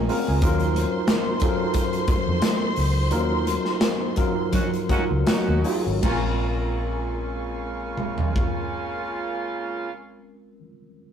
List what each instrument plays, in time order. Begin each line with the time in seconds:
Already playing: tine electric piano G#3 A#3 C#4 F4 A#4
0.01 string section D#4 D#5
0.09 tine electric piano G#3 C4 C#4 F4 A#4, string section F4 F5, open hi-hat
0.18 string section F#4 F#5
0.27 fingered electric bass C#2, string section G#4 G#5
0.35 string section A#4 A#5
0.42 fingered electric bass D#2, tine electric piano F#3 C#4 D#4 F4 A#4, string section C5 C6, kick, closed hi-hat
0.60 closed hi-hat
0.75 closed hi-hat, muted conga
1.07 snare, closed hi-hat, high conga
1.40 tine electric piano F#3 C#4 D#4 F4 A4, kick, closed hi-hat
1.49 tine electric piano A#4
1.74 kick, closed hi-hat, muted conga
1.93 closed hi-hat
2.08 muted fingered electric bass stroke, kick, closed hi-hat, muted conga
2.28 fingered electric bass F2
2.42 snare, closed hi-hat, high conga
2.61 high conga
2.76 fingered electric bass C#2, open hi-hat
3.11 fingered electric bass D#2, tine electric piano F#3 C#4 D#4 F4 A#4, closed hi-hat
3.45 closed hi-hat, muted conga
3.65 snare
3.80 snare, closed hi-hat, high conga
4.16 tine electric piano F#3 C#4 D#4 F4 A#4, kick, closed hi-hat
4.52 horn section C#4 D#4 F#4, kick, closed hi-hat, low conga
4.74 closed hi-hat
4.89 tine electric piano F#3 C#4 D#4 F4 A#4, horn section C#4 D#4 F#4, muted fingered electric bass stroke, kick, closed hi-hat, muted conga
5.11 fingered electric bass C#2
5.27 horn section C#4 D#4 F#4, snare, closed hi-hat, high conga
5.47 fingered electric bass D#2, high conga
5.64 tine electric piano F#3 C#4 D#4 F4 C#5, open hi-hat
5.87 fingered electric bass G#1
6.01 fingered electric bass A#1, horn section C#3 A#3 F4, tine electric piano G#3 C4 C#4 F4, string section A#4 G#5 C#6, kick, crash, muted conga
6.06 tine electric piano A#4
7.97 mid tom
8.18 floor tom
8.36 kick